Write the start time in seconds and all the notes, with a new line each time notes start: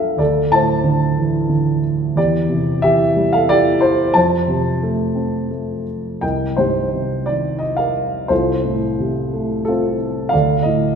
Already playing: A#2 F3 D4 F4 A4 A#4 D5 E5 F5
0.17 D2 A4 D5
0.51 A2 C5 A5
0.84 D3
1.18 E3
1.49 D3
2.16 E2 G4 D5
2.49 C3
2.82 E3 G4 E5
3.16 G3
3.33 A4 F5
3.49 E3 G4 D5
3.81 E4 C5
4.14 F2 C5 A5
4.48 C3
4.83 A3
5.15 C4
5.51 A3
6.21 C2 A#4 D#5 G5
6.57 G2 D#4 G4 C5
6.93 C3
7.26 D#3 D5
7.59 D#5
7.77 A#4 F5
8.28 C2 F4 A4 C5
8.65 A2
8.99 C3
9.33 A3
9.65 C4 F4 A4
10.29 D5 F5
10.33 D2 A4
10.63 A2 D#5